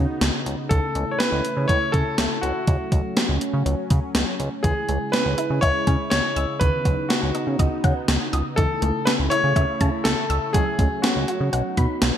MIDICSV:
0, 0, Header, 1, 6, 480
1, 0, Start_track
1, 0, Tempo, 491803
1, 691, Time_signature, 4, 2, 24, 8
1, 11885, End_track
2, 0, Start_track
2, 0, Title_t, "Grand piano"
2, 0, Program_c, 0, 0
2, 0, Note_on_c, 0, 66, 73
2, 405, Note_off_c, 0, 66, 0
2, 677, Note_on_c, 0, 69, 93
2, 1088, Note_on_c, 0, 73, 75
2, 1108, Note_off_c, 0, 69, 0
2, 1157, Note_on_c, 0, 71, 93
2, 1163, Note_off_c, 0, 73, 0
2, 1637, Note_on_c, 0, 73, 107
2, 1659, Note_off_c, 0, 71, 0
2, 1876, Note_on_c, 0, 69, 98
2, 1891, Note_off_c, 0, 73, 0
2, 2357, Note_on_c, 0, 66, 84
2, 2378, Note_off_c, 0, 69, 0
2, 3765, Note_off_c, 0, 66, 0
2, 4516, Note_on_c, 0, 68, 92
2, 4969, Note_off_c, 0, 68, 0
2, 4997, Note_on_c, 0, 71, 95
2, 5450, Note_off_c, 0, 71, 0
2, 5477, Note_on_c, 0, 73, 109
2, 5930, Note_off_c, 0, 73, 0
2, 5957, Note_on_c, 0, 73, 105
2, 6437, Note_on_c, 0, 71, 96
2, 6458, Note_off_c, 0, 73, 0
2, 6917, Note_on_c, 0, 66, 75
2, 6938, Note_off_c, 0, 71, 0
2, 8085, Note_off_c, 0, 66, 0
2, 8357, Note_on_c, 0, 69, 94
2, 8837, Note_on_c, 0, 71, 97
2, 8858, Note_off_c, 0, 69, 0
2, 8893, Note_off_c, 0, 71, 0
2, 9077, Note_on_c, 0, 73, 109
2, 9797, Note_on_c, 0, 69, 95
2, 9826, Note_off_c, 0, 73, 0
2, 10278, Note_on_c, 0, 68, 95
2, 10299, Note_off_c, 0, 69, 0
2, 10757, Note_on_c, 0, 66, 73
2, 10779, Note_off_c, 0, 68, 0
2, 11885, Note_off_c, 0, 66, 0
2, 11885, End_track
3, 0, Start_track
3, 0, Title_t, "Synth arpeggio sound"
3, 0, Program_c, 1, 84
3, 4531, Note_on_c, 1, 52, 89
3, 4710, Note_off_c, 1, 52, 0
3, 4770, Note_on_c, 1, 56, 77
3, 4949, Note_off_c, 1, 56, 0
3, 5010, Note_on_c, 1, 61, 81
3, 5190, Note_off_c, 1, 61, 0
3, 5250, Note_on_c, 1, 64, 93
3, 5430, Note_off_c, 1, 64, 0
3, 5490, Note_on_c, 1, 76, 84
3, 5669, Note_off_c, 1, 76, 0
3, 5730, Note_on_c, 1, 80, 84
3, 5909, Note_off_c, 1, 80, 0
3, 6211, Note_on_c, 1, 88, 91
3, 6390, Note_off_c, 1, 88, 0
3, 6450, Note_on_c, 1, 51, 90
3, 6629, Note_off_c, 1, 51, 0
3, 6690, Note_on_c, 1, 54, 72
3, 6869, Note_off_c, 1, 54, 0
3, 6930, Note_on_c, 1, 59, 77
3, 7109, Note_off_c, 1, 59, 0
3, 7170, Note_on_c, 1, 63, 92
3, 7349, Note_off_c, 1, 63, 0
3, 7411, Note_on_c, 1, 75, 86
3, 7590, Note_off_c, 1, 75, 0
3, 7651, Note_on_c, 1, 78, 81
3, 7830, Note_off_c, 1, 78, 0
3, 8131, Note_on_c, 1, 87, 89
3, 8310, Note_off_c, 1, 87, 0
3, 8371, Note_on_c, 1, 52, 90
3, 8550, Note_off_c, 1, 52, 0
3, 8611, Note_on_c, 1, 57, 77
3, 8790, Note_off_c, 1, 57, 0
3, 8851, Note_on_c, 1, 61, 76
3, 9030, Note_off_c, 1, 61, 0
3, 9091, Note_on_c, 1, 64, 96
3, 9270, Note_off_c, 1, 64, 0
3, 9331, Note_on_c, 1, 76, 83
3, 9510, Note_off_c, 1, 76, 0
3, 9571, Note_on_c, 1, 81, 85
3, 9750, Note_off_c, 1, 81, 0
3, 10051, Note_on_c, 1, 88, 92
3, 10230, Note_off_c, 1, 88, 0
3, 10291, Note_on_c, 1, 54, 91
3, 10470, Note_off_c, 1, 54, 0
3, 10531, Note_on_c, 1, 57, 75
3, 10710, Note_off_c, 1, 57, 0
3, 10771, Note_on_c, 1, 61, 75
3, 10950, Note_off_c, 1, 61, 0
3, 11011, Note_on_c, 1, 66, 92
3, 11190, Note_off_c, 1, 66, 0
3, 11251, Note_on_c, 1, 78, 84
3, 11430, Note_off_c, 1, 78, 0
3, 11491, Note_on_c, 1, 83, 83
3, 11670, Note_off_c, 1, 83, 0
3, 11885, End_track
4, 0, Start_track
4, 0, Title_t, "Analog synth pad"
4, 0, Program_c, 2, 89
4, 0, Note_on_c, 2, 49, 74
4, 0, Note_on_c, 2, 59, 68
4, 0, Note_on_c, 2, 63, 82
4, 671, Note_off_c, 2, 59, 0
4, 671, Note_off_c, 2, 63, 0
4, 690, Note_on_c, 2, 57, 69
4, 691, Note_on_c, 2, 64, 83
4, 2572, Note_off_c, 2, 49, 0
4, 2592, Note_off_c, 2, 64, 0
4, 2611, Note_on_c, 2, 54, 75
4, 2611, Note_on_c, 2, 61, 84
4, 4492, Note_off_c, 2, 57, 0
4, 4512, Note_off_c, 2, 54, 0
4, 4512, Note_off_c, 2, 61, 0
4, 4531, Note_on_c, 2, 49, 72
4, 4531, Note_on_c, 2, 56, 67
4, 4531, Note_on_c, 2, 64, 83
4, 6432, Note_off_c, 2, 56, 0
4, 6432, Note_off_c, 2, 64, 0
4, 6451, Note_on_c, 2, 59, 69
4, 6452, Note_on_c, 2, 63, 84
4, 8332, Note_off_c, 2, 49, 0
4, 8352, Note_off_c, 2, 59, 0
4, 8352, Note_off_c, 2, 63, 0
4, 8371, Note_on_c, 2, 49, 77
4, 8371, Note_on_c, 2, 57, 70
4, 8371, Note_on_c, 2, 64, 83
4, 10272, Note_off_c, 2, 49, 0
4, 10272, Note_off_c, 2, 64, 0
4, 10291, Note_on_c, 2, 54, 75
4, 10291, Note_on_c, 2, 61, 82
4, 11222, Note_off_c, 2, 57, 0
4, 11241, Note_off_c, 2, 61, 0
4, 11251, Note_on_c, 2, 63, 84
4, 11252, Note_on_c, 2, 59, 69
4, 11885, Note_off_c, 2, 54, 0
4, 11885, Note_off_c, 2, 59, 0
4, 11885, Note_off_c, 2, 63, 0
4, 11885, End_track
5, 0, Start_track
5, 0, Title_t, "Analog synth bass"
5, 0, Program_c, 3, 38
5, 210, Note_on_c, 3, 37, 112
5, 303, Note_off_c, 3, 37, 0
5, 451, Note_on_c, 3, 37, 100
5, 544, Note_off_c, 3, 37, 0
5, 691, Note_on_c, 3, 37, 102
5, 784, Note_off_c, 3, 37, 0
5, 930, Note_on_c, 3, 37, 104
5, 1024, Note_off_c, 3, 37, 0
5, 1291, Note_on_c, 3, 37, 99
5, 1384, Note_off_c, 3, 37, 0
5, 1531, Note_on_c, 3, 49, 97
5, 1624, Note_off_c, 3, 49, 0
5, 1650, Note_on_c, 3, 37, 102
5, 1744, Note_off_c, 3, 37, 0
5, 1893, Note_on_c, 3, 49, 95
5, 1985, Note_off_c, 3, 49, 0
5, 2130, Note_on_c, 3, 37, 99
5, 2223, Note_off_c, 3, 37, 0
5, 2370, Note_on_c, 3, 37, 98
5, 2464, Note_off_c, 3, 37, 0
5, 2611, Note_on_c, 3, 37, 107
5, 2704, Note_off_c, 3, 37, 0
5, 2849, Note_on_c, 3, 37, 98
5, 2943, Note_off_c, 3, 37, 0
5, 3211, Note_on_c, 3, 37, 97
5, 3304, Note_off_c, 3, 37, 0
5, 3450, Note_on_c, 3, 49, 100
5, 3544, Note_off_c, 3, 49, 0
5, 3570, Note_on_c, 3, 37, 108
5, 3663, Note_off_c, 3, 37, 0
5, 3812, Note_on_c, 3, 49, 96
5, 3905, Note_off_c, 3, 49, 0
5, 4050, Note_on_c, 3, 37, 103
5, 4143, Note_off_c, 3, 37, 0
5, 4290, Note_on_c, 3, 37, 96
5, 4384, Note_off_c, 3, 37, 0
5, 4531, Note_on_c, 3, 37, 106
5, 4624, Note_off_c, 3, 37, 0
5, 4771, Note_on_c, 3, 37, 101
5, 4864, Note_off_c, 3, 37, 0
5, 5131, Note_on_c, 3, 37, 103
5, 5224, Note_off_c, 3, 37, 0
5, 5371, Note_on_c, 3, 49, 95
5, 5464, Note_off_c, 3, 49, 0
5, 5490, Note_on_c, 3, 37, 103
5, 5583, Note_off_c, 3, 37, 0
5, 5732, Note_on_c, 3, 49, 101
5, 5825, Note_off_c, 3, 49, 0
5, 5970, Note_on_c, 3, 37, 104
5, 6064, Note_off_c, 3, 37, 0
5, 6210, Note_on_c, 3, 37, 95
5, 6303, Note_off_c, 3, 37, 0
5, 6451, Note_on_c, 3, 37, 111
5, 6544, Note_off_c, 3, 37, 0
5, 6689, Note_on_c, 3, 37, 94
5, 6783, Note_off_c, 3, 37, 0
5, 7051, Note_on_c, 3, 37, 96
5, 7144, Note_off_c, 3, 37, 0
5, 7290, Note_on_c, 3, 49, 91
5, 7384, Note_off_c, 3, 49, 0
5, 7410, Note_on_c, 3, 37, 113
5, 7503, Note_off_c, 3, 37, 0
5, 7653, Note_on_c, 3, 49, 92
5, 7745, Note_off_c, 3, 49, 0
5, 7891, Note_on_c, 3, 37, 109
5, 7984, Note_off_c, 3, 37, 0
5, 8131, Note_on_c, 3, 37, 106
5, 8224, Note_off_c, 3, 37, 0
5, 8371, Note_on_c, 3, 37, 102
5, 8464, Note_off_c, 3, 37, 0
5, 8611, Note_on_c, 3, 37, 105
5, 8704, Note_off_c, 3, 37, 0
5, 8971, Note_on_c, 3, 37, 95
5, 9064, Note_off_c, 3, 37, 0
5, 9211, Note_on_c, 3, 49, 94
5, 9304, Note_off_c, 3, 49, 0
5, 9331, Note_on_c, 3, 37, 104
5, 9424, Note_off_c, 3, 37, 0
5, 9573, Note_on_c, 3, 49, 96
5, 9665, Note_off_c, 3, 49, 0
5, 9811, Note_on_c, 3, 37, 102
5, 9904, Note_off_c, 3, 37, 0
5, 10051, Note_on_c, 3, 37, 95
5, 10144, Note_off_c, 3, 37, 0
5, 10292, Note_on_c, 3, 37, 103
5, 10384, Note_off_c, 3, 37, 0
5, 10529, Note_on_c, 3, 37, 94
5, 10623, Note_off_c, 3, 37, 0
5, 10891, Note_on_c, 3, 37, 88
5, 10984, Note_off_c, 3, 37, 0
5, 11131, Note_on_c, 3, 49, 98
5, 11224, Note_off_c, 3, 49, 0
5, 11250, Note_on_c, 3, 35, 105
5, 11344, Note_off_c, 3, 35, 0
5, 11493, Note_on_c, 3, 47, 97
5, 11585, Note_off_c, 3, 47, 0
5, 11731, Note_on_c, 3, 35, 104
5, 11824, Note_off_c, 3, 35, 0
5, 11885, End_track
6, 0, Start_track
6, 0, Title_t, "Drums"
6, 209, Note_on_c, 9, 38, 118
6, 211, Note_on_c, 9, 42, 83
6, 306, Note_off_c, 9, 38, 0
6, 309, Note_off_c, 9, 42, 0
6, 452, Note_on_c, 9, 42, 68
6, 550, Note_off_c, 9, 42, 0
6, 690, Note_on_c, 9, 42, 81
6, 691, Note_on_c, 9, 36, 109
6, 788, Note_off_c, 9, 42, 0
6, 789, Note_off_c, 9, 36, 0
6, 930, Note_on_c, 9, 42, 67
6, 1027, Note_off_c, 9, 42, 0
6, 1170, Note_on_c, 9, 42, 70
6, 1173, Note_on_c, 9, 38, 114
6, 1268, Note_off_c, 9, 42, 0
6, 1271, Note_off_c, 9, 38, 0
6, 1411, Note_on_c, 9, 42, 75
6, 1509, Note_off_c, 9, 42, 0
6, 1650, Note_on_c, 9, 36, 88
6, 1654, Note_on_c, 9, 42, 77
6, 1748, Note_off_c, 9, 36, 0
6, 1751, Note_off_c, 9, 42, 0
6, 1891, Note_on_c, 9, 42, 66
6, 1893, Note_on_c, 9, 36, 92
6, 1988, Note_off_c, 9, 42, 0
6, 1991, Note_off_c, 9, 36, 0
6, 2129, Note_on_c, 9, 38, 121
6, 2131, Note_on_c, 9, 42, 89
6, 2226, Note_off_c, 9, 38, 0
6, 2229, Note_off_c, 9, 42, 0
6, 2372, Note_on_c, 9, 42, 68
6, 2470, Note_off_c, 9, 42, 0
6, 2610, Note_on_c, 9, 42, 80
6, 2611, Note_on_c, 9, 36, 105
6, 2708, Note_off_c, 9, 36, 0
6, 2708, Note_off_c, 9, 42, 0
6, 2849, Note_on_c, 9, 36, 88
6, 2849, Note_on_c, 9, 42, 67
6, 2946, Note_off_c, 9, 36, 0
6, 2947, Note_off_c, 9, 42, 0
6, 3090, Note_on_c, 9, 42, 70
6, 3093, Note_on_c, 9, 38, 112
6, 3188, Note_off_c, 9, 42, 0
6, 3190, Note_off_c, 9, 38, 0
6, 3331, Note_on_c, 9, 42, 77
6, 3428, Note_off_c, 9, 42, 0
6, 3573, Note_on_c, 9, 42, 75
6, 3670, Note_off_c, 9, 42, 0
6, 3810, Note_on_c, 9, 42, 67
6, 3813, Note_on_c, 9, 36, 94
6, 3908, Note_off_c, 9, 42, 0
6, 3910, Note_off_c, 9, 36, 0
6, 4048, Note_on_c, 9, 38, 116
6, 4051, Note_on_c, 9, 42, 88
6, 4146, Note_off_c, 9, 38, 0
6, 4148, Note_off_c, 9, 42, 0
6, 4292, Note_on_c, 9, 42, 67
6, 4389, Note_off_c, 9, 42, 0
6, 4529, Note_on_c, 9, 42, 80
6, 4530, Note_on_c, 9, 36, 107
6, 4627, Note_off_c, 9, 42, 0
6, 4628, Note_off_c, 9, 36, 0
6, 4769, Note_on_c, 9, 42, 67
6, 4866, Note_off_c, 9, 42, 0
6, 5010, Note_on_c, 9, 42, 70
6, 5012, Note_on_c, 9, 38, 109
6, 5107, Note_off_c, 9, 42, 0
6, 5110, Note_off_c, 9, 38, 0
6, 5250, Note_on_c, 9, 42, 77
6, 5348, Note_off_c, 9, 42, 0
6, 5490, Note_on_c, 9, 36, 85
6, 5493, Note_on_c, 9, 42, 76
6, 5587, Note_off_c, 9, 36, 0
6, 5590, Note_off_c, 9, 42, 0
6, 5730, Note_on_c, 9, 42, 69
6, 5732, Note_on_c, 9, 36, 95
6, 5828, Note_off_c, 9, 42, 0
6, 5830, Note_off_c, 9, 36, 0
6, 5968, Note_on_c, 9, 38, 117
6, 5971, Note_on_c, 9, 42, 84
6, 6066, Note_off_c, 9, 38, 0
6, 6068, Note_off_c, 9, 42, 0
6, 6212, Note_on_c, 9, 42, 68
6, 6309, Note_off_c, 9, 42, 0
6, 6450, Note_on_c, 9, 42, 81
6, 6451, Note_on_c, 9, 36, 105
6, 6548, Note_off_c, 9, 36, 0
6, 6548, Note_off_c, 9, 42, 0
6, 6689, Note_on_c, 9, 36, 94
6, 6689, Note_on_c, 9, 42, 68
6, 6786, Note_off_c, 9, 36, 0
6, 6787, Note_off_c, 9, 42, 0
6, 6930, Note_on_c, 9, 42, 68
6, 6933, Note_on_c, 9, 38, 109
6, 7028, Note_off_c, 9, 42, 0
6, 7031, Note_off_c, 9, 38, 0
6, 7171, Note_on_c, 9, 42, 74
6, 7268, Note_off_c, 9, 42, 0
6, 7410, Note_on_c, 9, 36, 85
6, 7414, Note_on_c, 9, 42, 76
6, 7508, Note_off_c, 9, 36, 0
6, 7511, Note_off_c, 9, 42, 0
6, 7651, Note_on_c, 9, 42, 68
6, 7653, Note_on_c, 9, 36, 94
6, 7749, Note_off_c, 9, 42, 0
6, 7751, Note_off_c, 9, 36, 0
6, 7889, Note_on_c, 9, 38, 122
6, 7892, Note_on_c, 9, 42, 84
6, 7987, Note_off_c, 9, 38, 0
6, 7989, Note_off_c, 9, 42, 0
6, 8132, Note_on_c, 9, 42, 69
6, 8230, Note_off_c, 9, 42, 0
6, 8370, Note_on_c, 9, 42, 81
6, 8371, Note_on_c, 9, 36, 105
6, 8468, Note_off_c, 9, 42, 0
6, 8469, Note_off_c, 9, 36, 0
6, 8610, Note_on_c, 9, 42, 69
6, 8707, Note_off_c, 9, 42, 0
6, 8851, Note_on_c, 9, 42, 69
6, 8853, Note_on_c, 9, 38, 116
6, 8948, Note_off_c, 9, 42, 0
6, 8951, Note_off_c, 9, 38, 0
6, 9091, Note_on_c, 9, 42, 75
6, 9189, Note_off_c, 9, 42, 0
6, 9330, Note_on_c, 9, 36, 89
6, 9333, Note_on_c, 9, 42, 76
6, 9428, Note_off_c, 9, 36, 0
6, 9431, Note_off_c, 9, 42, 0
6, 9571, Note_on_c, 9, 42, 65
6, 9573, Note_on_c, 9, 36, 97
6, 9669, Note_off_c, 9, 42, 0
6, 9671, Note_off_c, 9, 36, 0
6, 9809, Note_on_c, 9, 38, 116
6, 9811, Note_on_c, 9, 42, 85
6, 9906, Note_off_c, 9, 38, 0
6, 9909, Note_off_c, 9, 42, 0
6, 10053, Note_on_c, 9, 42, 68
6, 10151, Note_off_c, 9, 42, 0
6, 10291, Note_on_c, 9, 36, 104
6, 10291, Note_on_c, 9, 42, 83
6, 10388, Note_off_c, 9, 42, 0
6, 10389, Note_off_c, 9, 36, 0
6, 10529, Note_on_c, 9, 36, 90
6, 10530, Note_on_c, 9, 42, 68
6, 10627, Note_off_c, 9, 36, 0
6, 10628, Note_off_c, 9, 42, 0
6, 10771, Note_on_c, 9, 42, 70
6, 10773, Note_on_c, 9, 38, 115
6, 10868, Note_off_c, 9, 42, 0
6, 10871, Note_off_c, 9, 38, 0
6, 11011, Note_on_c, 9, 42, 75
6, 11109, Note_off_c, 9, 42, 0
6, 11253, Note_on_c, 9, 42, 76
6, 11351, Note_off_c, 9, 42, 0
6, 11491, Note_on_c, 9, 42, 68
6, 11493, Note_on_c, 9, 36, 92
6, 11589, Note_off_c, 9, 42, 0
6, 11591, Note_off_c, 9, 36, 0
6, 11729, Note_on_c, 9, 38, 118
6, 11731, Note_on_c, 9, 42, 90
6, 11826, Note_off_c, 9, 38, 0
6, 11829, Note_off_c, 9, 42, 0
6, 11885, End_track
0, 0, End_of_file